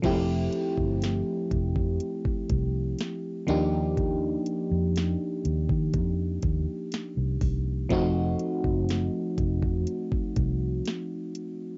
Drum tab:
CC |x---------------|----------------|----------------|
HH |x-x-x-x-x-x-x-x-|x-x-x-x-x-x-x-o-|x-x-x-x-x-x-x-x-|
SD |----o-------o---|----o-------o---|----o-------o---|
BD |o--o--oo-oo-----|o------oo-o---o-|o--o--oo-oo-----|